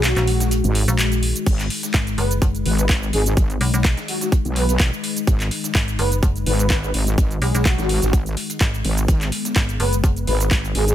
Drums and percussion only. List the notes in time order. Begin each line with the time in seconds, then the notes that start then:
0.04 snare, clap, closed hi-hat, cabasa
0.17 snare, clap, closed hi-hat, cabasa
0.27 closed hi-hat, open hi-hat
0.40 snare, closed hi-hat, cabasa
0.51 closed hi-hat, cabasa
0.64 closed hi-hat, cabasa
0.75 closed hi-hat, open hi-hat
0.88 closed hi-hat, cabasa
0.99 snare, clap, closed hi-hat, cabasa
1.12 closed hi-hat, cabasa
1.23 open hi-hat
1.36 closed hi-hat, cabasa
1.46 kick, closed hi-hat, crash, cabasa
1.59 clap, closed hi-hat, cabasa
1.70 closed hi-hat, open hi-hat
1.83 snare, closed hi-hat, cabasa
1.94 kick, snare, clap, closed hi-hat, cabasa
2.07 closed hi-hat, cabasa
2.18 closed hi-hat, open hi-hat
2.31 closed hi-hat, cabasa
2.42 kick, closed hi-hat, cabasa
2.55 closed hi-hat, cabasa
2.66 closed hi-hat, open hi-hat
2.78 closed hi-hat, cabasa
2.89 kick, snare, clap, closed hi-hat, cabasa
3.03 cabasa
3.13 closed hi-hat, open hi-hat
3.26 closed hi-hat, cabasa
3.37 kick, closed hi-hat, cabasa
3.50 closed hi-hat, cabasa
3.61 closed hi-hat, open hi-hat
3.74 snare, closed hi-hat, cabasa
3.85 kick, snare, clap, closed hi-hat, cabasa
3.97 snare, closed hi-hat, cabasa
4.08 closed hi-hat, open hi-hat
4.21 snare, closed hi-hat, cabasa
4.32 kick, closed hi-hat, cabasa
4.45 closed hi-hat, cabasa
4.56 closed hi-hat, open hi-hat
4.69 closed hi-hat, cabasa
4.80 kick, snare, clap, closed hi-hat, cabasa
4.93 cabasa
5.04 closed hi-hat, open hi-hat
5.17 closed hi-hat, cabasa
5.27 kick, closed hi-hat, cabasa
5.40 clap, closed hi-hat, cabasa
5.51 closed hi-hat, open hi-hat
5.64 snare, closed hi-hat, cabasa
5.75 kick, snare, clap, closed hi-hat, cabasa
5.88 closed hi-hat, cabasa
5.99 closed hi-hat, open hi-hat
6.12 closed hi-hat, cabasa
6.23 kick, closed hi-hat, cabasa
6.36 closed hi-hat, cabasa
6.46 closed hi-hat, open hi-hat
6.59 closed hi-hat, cabasa
6.70 kick, snare, clap, closed hi-hat, cabasa
6.84 cabasa
6.94 closed hi-hat, open hi-hat
7.07 closed hi-hat, cabasa
7.18 kick, closed hi-hat, cabasa
7.31 closed hi-hat, cabasa
7.42 closed hi-hat, open hi-hat
7.55 snare, closed hi-hat, cabasa
7.65 kick, snare, clap, closed hi-hat, cabasa
7.78 snare, closed hi-hat, cabasa
7.89 closed hi-hat, open hi-hat
8.02 snare, closed hi-hat, cabasa
8.13 kick, closed hi-hat, cabasa
8.26 closed hi-hat, cabasa
8.37 closed hi-hat, open hi-hat
8.50 closed hi-hat, cabasa
8.61 kick, snare, clap, closed hi-hat, cabasa
8.74 cabasa
8.85 closed hi-hat, open hi-hat
8.97 closed hi-hat, cabasa
9.08 kick, closed hi-hat, cabasa
9.21 clap, closed hi-hat, cabasa
9.32 closed hi-hat, open hi-hat
9.45 snare, closed hi-hat, cabasa
9.56 kick, snare, clap, closed hi-hat, cabasa
9.69 closed hi-hat, cabasa
9.80 closed hi-hat, open hi-hat
9.93 closed hi-hat, cabasa
10.04 kick, closed hi-hat, cabasa
10.16 closed hi-hat, cabasa
10.27 closed hi-hat, open hi-hat
10.40 closed hi-hat, cabasa
10.51 kick, snare, clap, closed hi-hat, cabasa
10.65 cabasa
10.75 closed hi-hat, open hi-hat
10.88 closed hi-hat, cabasa